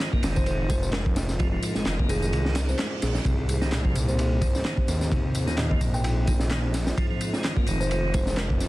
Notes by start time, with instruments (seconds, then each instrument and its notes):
Already playing: analog synth pad G#3 C4 D#4 F4 C5
0.00 snare, clap, ride, tambourine
0.13 tonewheel organ A#3, kick
0.23 detuned saw bass F1, tonewheel organ D#3, snare, ride, tambourine
0.36 kalimba C5, kick, tambourine
0.46 kalimba C5, ride, tambourine
0.70 tonewheel organ G#3, kalimba C5, kick, ride, tambourine
0.83 kalimba C5, tambourine
0.93 tonewheel organ G#3, kalimba A#4, snare, clap, ride
1.06 kick
1.16 snare, ride, tambourine
1.29 snare, tambourine
1.39 tonewheel organ F3, analog synth pad A#4, kick, ride, tambourine
1.52 tonewheel organ F3
1.63 ride, tambourine
1.75 detuned saw bass F1, tonewheel organ G#3, snare, ride, tambourine
1.86 detuned saw bass F1, tonewheel organ D#3, snare, clap, ride, tambourine
1.99 tonewheel organ A#3, kick
2.09 tonewheel organ D#3, kalimba G#4, ride, tambourine
2.22 kalimba G#4, tambourine
2.33 detuned saw bass C2, ride, tambourine, reverse cymbal
2.45 snare
2.55 tonewheel organ G#3, snare, ride, tambourine
2.69 kalimba C5, tambourine
2.79 tonewheel organ G#3, snare, clap, ride, tambourine
3.02 detuned saw bass A#1, kalimba G#4, snare, ride, tambourine
3.15 snare, tambourine
3.25 detuned saw bass C2, tonewheel organ C3, analog synth pad A#3 G4 C5, kick, ride, tambourine
3.38 tonewheel organ C3
3.49 ride, tambourine
3.62 tonewheel organ D#3, snare, tambourine
3.72 tonewheel organ A#2, snare, clap, ride, tambourine
3.85 tonewheel organ F3, kick
3.95 tonewheel organ A#2, ride, tambourine
4.08 kalimba C5, tambourine
4.18 kalimba C5, ride, tambourine
4.42 tonewheel organ D#3, kalimba C5, kick, ride, tambourine
4.54 kalimba C5, snare, tambourine
4.65 tonewheel organ D#3, snare, clap, ride, tambourine
4.77 kick
4.88 detuned saw bass D#2, snare, ride, tambourine
5.01 snare, tambourine
5.11 tonewheel organ C3, analog synth pad F4, kick, ride, tambourine
5.24 tonewheel organ C3
5.35 ride, tambourine
5.47 tonewheel organ D#3, snare, ride, tambourine
5.57 tonewheel organ A#2, kalimba D#5, snare, clap, ride, tambourine
5.70 tonewheel organ F3, kalimba D#5, kick
5.81 detuned saw bass A#1, tonewheel organ A#2, kick, ride, tambourine
5.94 kalimba G5, tambourine
6.04 kalimba G5, ride, tambourine
6.27 tonewheel organ D#3, kick, ride, tambourine
6.40 snare, tambourine
6.51 tonewheel organ D#3, snare, clap, ride, tambourine
6.74 snare, ride, tambourine
6.87 snare, tambourine
6.97 tonewheel organ F3, analog synth pad G#3, kick, ride, tambourine
7.11 tonewheel organ F3
7.21 ride, tambourine
7.33 tonewheel organ G#3, snare, tambourine
7.44 tonewheel organ D#3, snare, clap, ride, tambourine
7.56 tonewheel organ A#3, kick
7.66 detuned saw bass F1, tonewheel organ D#3, ride, tambourine
7.80 kalimba C5, tambourine
7.91 kalimba C5, ride, tambourine
8.14 tonewheel organ G#3, kalimba C5, kick, ride, tambourine
8.27 kalimba C5, snare, tambourine
8.37 tonewheel organ G#3, kalimba A#4, snare, clap, ride, tambourine
8.50 kick
8.61 snare, ride, tambourine